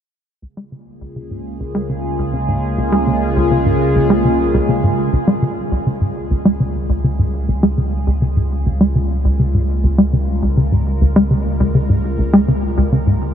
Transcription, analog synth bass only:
0.42 0.46 C#2 medium
0.57 0.64 G#3 medium
0.72 0.76 C#3 medium
1.01 1.08 C#2 medium
1.16 1.23 C#3 medium
1.31 1.41 G#2 medium
1.60 1.64 C#2 medium
1.75 1.82 G#3 medium
1.89 1.94 C#3 medium
2.19 2.26 C#2 medium
2.33 2.40 C#3 medium
2.48 2.59 G#2 medium
2.78 2.82 C#2 medium
2.92 2.99 G#3 loud
3.07 3.11 C#3 medium
3.37 3.43 C#2 medium
3.51 3.58 C#3 medium
3.66 3.76 G#2 medium
3.95 3.99 C#2 medium
4.10 4.17 G#3 loud
4.25 4.29 C#3 medium
4.54 4.61 C#2 medium
4.69 4.76 C#3 medium
4.83 4.94 G#2 medium
5.13 5.17 C#2 loud
5.27 5.34 G#3 medium
5.42 5.46 C#3 medium
5.72 5.79 C#2 medium
5.86 5.93 C#3 medium
6.01 6.11 G#2 medium
6.31 6.35 C#2 medium
6.45 6.52 G#3 medium
6.60 6.64 C#3 medium
6.89 6.96 C#2 medium
7.04 7.11 C#3 medium
7.19 7.29 G#2 medium
7.48 7.52 C#2 medium
7.63 7.70 G#3 medium
7.78 7.82 C#3 medium
8.07 8.14 C#2 medium
8.22 8.29 C#3 medium
8.36 8.47 G#2 medium
8.66 8.70 C#2 medium
8.81 8.87 G#3 medium
8.95 8.99 C#3 medium
9.25 9.32 C#2 medium
9.39 9.46 C#3 medium
9.54 9.64 G#2 medium
9.84 9.88 C#2 medium
9.98 10.05 G#3 medium
10.13 10.17 C#3 medium
10.42 10.49 C#2 medium
10.57 10.64 C#3 medium
10.72 10.82 G#2 medium
11.01 11.05 C#2 medium
11.16 11.23 G#3 loud
11.30 11.35 C#3 medium
11.60 11.67 C#2 medium
11.75 11.82 C#3 medium
11.89 12.00 G#2 medium
12.19 12.23 C#2 medium
12.33 12.40 G#3 loud
12.48 12.52 C#3 medium
12.78 12.84 C#2 medium
12.92 12.99 C#3 medium
13.07 13.17 G#2 medium

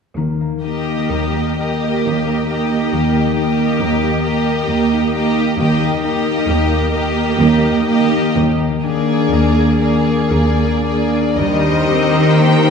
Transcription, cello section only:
0.15 0.98 D#2 soft
1.12 1.92 D#2 soft
2.05 2.80 D#2 soft
2.93 3.68 D#2 soft
3.80 4.57 D#2 soft
4.70 5.47 D#2 soft
5.59 6.36 D#2 soft
6.48 7.26 D#2 soft
7.39 8.22 D#2 soft
8.36 9.18 D#2 soft
9.31 10.18 D#2 soft
10.32 11.25 D#2 soft
11.39 12.70 D#3 soft

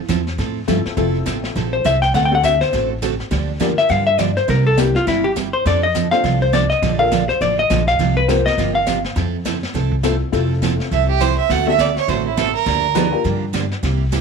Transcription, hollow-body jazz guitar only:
1.73 1.84 C5 medium
1.86 2.02 E5 medium
2.02 2.14 G5 loud
2.15 2.24 F#5 medium
2.25 2.34 G5 medium
2.35 2.44 F#5 medium
2.45 2.61 E5 medium
2.61 2.88 C5 loud
3.78 3.90 E5 loud
3.90 4.06 F5 loud
4.07 4.20 E5 medium
4.20 4.37 D5 medium
4.37 4.48 C5 medium
4.50 4.66 A#4 medium
4.67 4.79 A4 loud
4.79 4.95 G4 medium
4.96 5.07 F4 loud
5.08 5.25 E4 medium
5.24 5.31 G4 medium
5.53 5.65 C5 medium
5.67 5.83 D5 medium
5.83 6.10 D#5 medium
6.11 6.39 F5 loud
6.42 6.53 C5 loud
6.53 6.69 D5 medium
6.70 6.97 D#5 medium
6.99 7.27 F5 loud
7.29 7.40 C5 loud
7.42 7.58 D5 loud
7.59 7.86 D#5 loud
7.88 8.15 F5 loud
8.17 8.29 B4 loud
8.29 8.46 C5 medium
8.46 8.73 D#5 loud
8.75 9.02 F5 loud

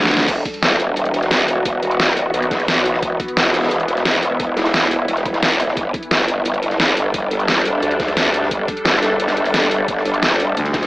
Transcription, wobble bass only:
0.28 0.44 E1 loud
0.63 0.96 E1 loud
0.97 1.30 E1 medium
1.31 1.64 E1 medium
1.65 1.81 E1 loud
1.83 2.33 E1 medium
2.34 3.01 B1 medium
3.03 3.18 E1 loud
3.37 3.70 E1 loud
3.71 4.04 E1 medium
4.05 4.38 E1 medium
4.40 4.56 E1 loud
4.57 5.07 E1 loud
5.08 5.56 E1 loud
5.56 5.76 D#1 loud
5.77 5.93 G1 loud
6.11 6.44 G1 loud
6.45 6.78 G1 loud
6.80 7.13 G1 loud
7.14 7.30 G1 loud
7.31 7.81 G1 loud
7.83 8.50 D2 loud
8.51 8.67 G1 loud
8.85 9.18 G1 loud
9.20 9.53 G1 medium
9.54 9.87 G1 loud
9.88 10.04 G1 loud
10.05 10.56 G1 loud

